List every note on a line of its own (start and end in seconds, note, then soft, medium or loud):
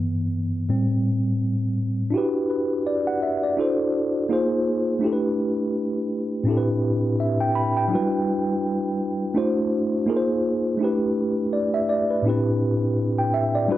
0.00 0.64 G2 medium
0.00 0.65 E3 soft
0.00 0.65 B3 medium
0.69 1.72 A2 medium
0.69 1.73 G3 soft
0.69 1.73 C4 medium
2.10 3.53 D4 medium
2.10 3.54 E4 soft
2.10 3.55 F#4 medium
2.16 3.56 G4 medium
2.16 2.49 B4 medium
2.50 2.83 B4 soft
2.87 3.05 D5 soft
3.07 3.21 F#5 medium
3.23 3.41 E5 soft
3.43 3.77 D5 soft
3.57 4.29 D4 medium
3.57 4.29 E4 soft
3.57 4.30 F#4 soft
3.57 4.30 A4 medium
3.57 4.31 C5 medium
4.29 5.01 A#3 medium
4.29 5.02 D#4 medium
4.29 5.02 F4 medium
4.29 5.03 G#4 soft
4.29 5.03 C5 medium
4.99 6.42 A3 soft
4.99 6.43 D4 medium
4.99 6.44 E4 medium
5.04 6.45 G4 soft
5.04 5.11 A4 medium
5.13 6.49 B4 medium
6.43 7.86 A2 medium
6.43 7.87 C4 soft
6.43 7.88 D4 medium
6.48 7.89 E4 medium
6.48 7.89 G4 soft
6.48 6.56 A4 medium
6.57 7.93 B4 medium
7.20 7.39 E5 soft
7.41 7.54 G5 medium
7.55 7.75 B5 medium
7.77 8.10 G5 medium
7.88 7.97 F#3 soft
7.88 9.32 D4 medium
7.88 9.33 E4 medium
7.93 9.34 G3 medium
7.93 9.34 F#4 medium
7.93 9.35 B4 medium
9.34 10.07 A3 medium
9.34 10.07 D4 medium
9.34 10.08 E4 medium
9.34 10.08 F#4 medium
9.34 10.09 C5 medium
10.06 10.79 A#3 medium
10.06 10.80 D#4 soft
10.06 10.80 F4 medium
10.06 10.81 G#4 soft
10.06 10.16 A#4 medium
10.17 10.84 C5 medium
10.78 12.20 A3 medium
10.78 12.21 D4 soft
10.78 12.22 E4 soft
10.83 12.23 G4 medium
10.83 11.53 B4 medium
11.53 11.72 D5 soft
11.74 11.88 E5 medium
11.89 12.08 D5 medium
12.10 12.28 B4 soft
12.22 13.65 A2 medium
12.22 12.31 B3 soft
12.22 13.66 D4 medium
12.27 13.69 C4 soft
12.27 13.67 E4 medium
12.27 13.68 G4 soft
12.27 13.69 B4 medium
13.18 13.32 G5 medium
13.34 13.53 E5 medium
13.55 13.78 D5 medium
13.68 13.78 G3 medium
13.68 13.78 D4 medium
13.68 13.78 E4 medium
13.68 13.78 F#4 medium
13.68 13.78 B4 medium